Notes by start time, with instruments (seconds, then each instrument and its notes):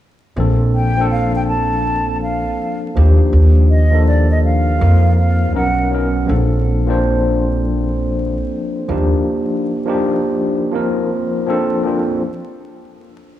0.36 upright bass A#1, tine electric piano F3 A#3 C4 D4 A4
0.74 flute G5
0.97 tine electric piano F3 A#3 C4 D4 A4
1.11 flute F5
1.36 flute G5
1.48 flute A5
2.22 flute F5
2.95 upright bass D#2, tine electric piano F3 A#3 D4 D#4 G4
3.33 upright bass D#2
3.70 flute D#5
3.91 tine electric piano F3 A#3 D4 D#4 A4
4.07 flute D5
4.31 flute D#5
4.45 flute F5
4.79 upright bass F2, tine electric piano F3 A#3 C4 D#4 A#4
5.19 flute F5
5.53 upright bass B1, tine electric piano F#3 B3 C#4 D#4 A#4, flute F#5
5.91 tine electric piano F#3 B3 C#4 D#4 A#4
6.26 upright bass A#1, tine electric piano F3 A#3 C4 D4 A4
6.87 tine electric piano F3 A#3 C4 D4 C5
8.88 upright bass D#2, tine electric piano F3 A#3 D4 D#4 G4
9.85 tine electric piano F3 A#3 D4 D#4 G4
10.72 tine electric piano F3 A#3 C4 D#4 A#4
11.46 tine electric piano F3 A#3 C4 D4 A4
11.84 tine electric piano F3 A#3 C4 D4 F4